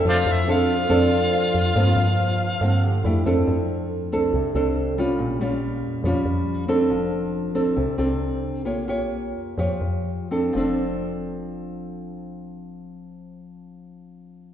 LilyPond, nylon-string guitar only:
\new Staff \with { instrumentName = "Nylon-string guitar" } { \time 4/4 \key f \major \tempo 4 = 140 << { <c' d' a'>4 <c' d' a'>8 r8 <c' d' a'>2 | <f bes c'>2 <f bes c'>8 r8 <a d' g'>8 <c' d' a'>8~ | <c' d' a'>4 r8 <c' d' a'>4 <c' d' a'>4 <g des' f'>8~ | <g des' f'>8 <g des' f'>4. <g des' f'>4. <c' d' a'>8~ |
<c' d' a'>4. <c' d' a'>4 <c' d' a'>4. | <f' g' des''>8 <f' g' des''>4. <f' g' des''>4. <c' d' a'>8~ | <c' d' a'>4 r2. | r1 | } \\ { f2 f2 | g,2 d4 r4 | f2 c2 | bes,2 f2 |
f2 c2 | bes2 f2 | <f c' d' a'>1~ | <f c' d' a'>1 | } >> }